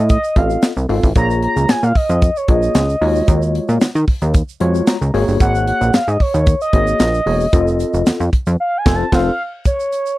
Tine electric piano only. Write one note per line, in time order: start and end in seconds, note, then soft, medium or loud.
0.36 0.71 C4 medium
0.36 0.71 F4 medium
0.36 0.71 A4 medium
0.36 0.71 D#5 medium
0.89 1.07 C4 medium
0.89 1.07 F4 medium
0.89 1.07 A4 medium
0.89 1.07 F5 medium
1.16 1.85 A#3 medium
1.16 1.85 F4 medium
1.16 1.85 G#4 medium
1.16 1.85 C#5 medium
2.48 2.83 A#3 medium
2.48 2.83 F4 medium
2.48 2.83 G#4 medium
2.48 2.83 C#5 medium
3.01 3.87 G#3 medium
3.01 3.87 F4 medium
3.01 3.87 F#4 medium
3.01 3.87 C#5 medium
4.60 4.95 G#3 medium
4.60 4.96 F4 medium
4.60 4.96 F#4 medium
4.60 4.96 C#5 loud
4.88 5.37 A#5 medium
5.14 5.99 A#3 medium
5.14 5.99 F#4 medium
5.14 5.99 G#4 medium
5.14 6.00 C#5 loud
6.73 7.08 A#3 medium
6.73 7.08 F#4 medium
6.73 7.08 G#4 medium
6.73 7.08 C#5 medium
7.26 7.44 A#3 medium
7.26 7.44 F#4 medium
7.26 7.44 G#4 medium
7.26 7.44 C#5 medium
7.53 8.22 C4 medium
7.53 8.22 F4 medium
7.53 8.22 A4 medium
7.53 8.23 D#5 loud
8.86 9.04 C4 loud
8.86 9.04 F4 loud
8.86 9.04 A4 loud
8.86 9.04 C5 loud
9.12 9.30 C4 loud
9.12 9.31 F4 loud
9.12 9.31 A4 loud
9.12 9.31 C5 loud